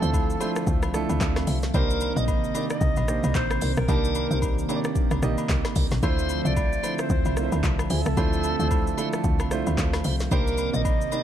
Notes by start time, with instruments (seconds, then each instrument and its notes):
Already playing: analog synth pad D3 F3 C4 E5, grand piano A3 D4 E4 F4 A4 C5, alto saxophone A4
0.02 log drum bass D2, grand piano A3 D4 E4 F4 C5, tonewheel organ F4 C5 E5, shaker
0.14 kick, high agogo, shaker
0.30 shaker
0.40 grand piano A3 D4 E4 F4 C5, tonewheel organ F4 C5 E5, high agogo, shaker
0.56 cross-stick, shaker
0.67 log drum bass D2, kick, shaker
0.82 log drum bass C2, cross-stick, high agogo, shaker
0.94 grand piano A3 D4 E4 F4 A4, cross-stick, shaker
1.09 log drum bass D2, high agogo, shaker
1.21 log drum bass D2, kick, snare, clap, shaker
1.36 cross-stick, snare, high agogo, shaker
1.47 log drum bass C2, tonewheel organ F4 C5 E5, open hi-hat, shaker
1.63 snare, shaker
1.74 log drum bass C2, analog synth pad C3 D#3 A#3, grand piano A#3 D4 D#4 G4 C5, tonewheel organ D#4 A#4 D5, alto saxophone A#4, kick, high agogo, shaker
1.90 shaker
2.01 high agogo, shaker
2.16 log drum bass A#1, tonewheel organ D#4 A#4 D5, alto saxophone D#5, shaker
2.28 kick, high agogo, shaker
2.44 shaker
2.54 grand piano A#3 D4 D#4 G4 D5, tonewheel organ D#4 A#4 D5, high agogo, shaker
2.70 alto saxophone D#5, cross-stick, shaker
2.81 log drum bass C2, kick, shaker
2.96 log drum bass A#1, high agogo, shaker
3.08 grand piano A#3 D4 D#4 G4 C5, cross-stick, shaker
3.24 log drum bass C2, high agogo, shaker
3.35 log drum bass A#1, alto saxophone C5, kick, clap, shaker
3.51 cross-stick, high agogo, shaker
3.61 log drum bass C2, tonewheel organ D#4 A#4 D5, open hi-hat, shaker
3.77 log drum bass A#1, alto saxophone A#4, cross-stick, shaker
3.88 log drum bass C2, grand piano A#3 D4 D#4 G4 A5, analog synth pad C4, tonewheel organ D#4 A#4 D5, kick, high agogo, shaker
4.04 shaker
4.15 high agogo, shaker
4.31 log drum bass C2, grand piano A#3 D4 D#4 G4 C5, tonewheel organ D#4 A#4 D5, shaker
4.42 kick, high agogo, shaker
4.59 shaker
4.69 grand piano A#3 D4 D#4 G4 C#5, tonewheel organ D#4 A#4 D5, high agogo, shaker
4.76 grand piano D5
4.84 cross-stick, shaker
4.95 kick, shaker
5.11 log drum bass C2, cross-stick, high agogo, shaker
5.22 log drum bass A#1, grand piano A#3 D#4 G4 D5 D#5, cross-stick, shaker
5.38 high agogo, shaker
5.49 log drum bass C2, kick, snare, clap, shaker
5.65 cross-stick, snare, high agogo, shaker
5.76 log drum bass C2, tonewheel organ D#4 A#4 D5, kick, open hi-hat, shaker
5.91 log drum bass A#1, snare, shaker
6.03 log drum bass D2, analog synth pad D3 F3 C4 E5, grand piano A3 D4 E4 F4 C5, tonewheel organ F4 C5 E5, alto saxophone C5, kick, high agogo, shaker
6.19 shaker
6.29 high agogo, shaker
6.45 log drum bass C2, tonewheel organ F4 C5 E5, alto saxophone D5, shaker
6.57 kick, high agogo, shaker
6.73 shaker
6.83 grand piano A3 D4 E4 F4 C5, tonewheel organ F4 C5 E5, high agogo, shaker
6.98 alto saxophone C5, cross-stick, shaker
7.10 log drum bass D2, alto saxophone C5, kick, shaker
7.25 log drum bass C2, high agogo, shaker
7.37 grand piano A3 D4 E4 F4 A#4, cross-stick, shaker
7.44 grand piano C5
7.52 log drum bass D2, high agogo, shaker
7.64 log drum bass C2, kick, clap, shaker
7.79 cross-stick, high agogo, shaker
7.90 log drum bass D2, tonewheel organ F4 C5 E5, alto saxophone A4, open hi-hat, shaker
8.05 log drum bass C2, cross-stick, shaker
8.17 log drum bass D2, grand piano A3 D4 E4 F4 C5, tonewheel organ F4 C5 E5, kick, high agogo, shaker
8.33 shaker
8.44 high agogo, shaker
8.59 log drum bass D2, grand piano A3 D4 E4 F4 C5, tonewheel organ F4 C5 E5, shaker
8.71 kick, high agogo, shaker
8.87 shaker
8.97 grand piano A3 D4 E4 F4 A4, tonewheel organ F4 C5 E5, high agogo, shaker
9.13 cross-stick, shaker
9.24 log drum bass D2, kick, shaker
9.39 log drum bass C2, cross-stick, high agogo, shaker
9.51 grand piano A3 D4 E4 F4 C5, cross-stick, shaker
9.67 log drum bass D2, high agogo, shaker
9.78 log drum bass D2, kick, snare, clap, shaker
9.93 cross-stick, snare, high agogo, shaker
10.04 log drum bass C2, tonewheel organ F4 C5 E5, open hi-hat, shaker
10.20 snare, shaker
10.31 log drum bass C2, analog synth pad C3 D#3 A#3 C4, grand piano A#3 D4 D#4 G4 C5, tonewheel organ D#4 A#4 D5, alto saxophone A#4, kick, high agogo, shaker
10.47 shaker
10.58 high agogo, shaker
10.73 log drum bass A#1, tonewheel organ D#4 A#4 D5, alto saxophone D#5, shaker
10.85 kick, high agogo, shaker
11.01 shaker
11.12 grand piano A#3 D4 D#4 G4 D5, tonewheel organ D#4 A#4 D5, high agogo, shaker